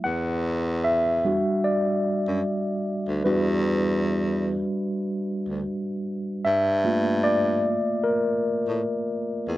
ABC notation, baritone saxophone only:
X:1
M:4/4
L:1/16
Q:"Swing 16ths" 1/4=75
K:Em
V:1 name="Baritone saxophone" clef=bass
E,,6- E,, z4 F,, z3 D,, | E,,6- E,, z4 D,, z4 | G,,6- G,, z4 A,, z3 E,, |]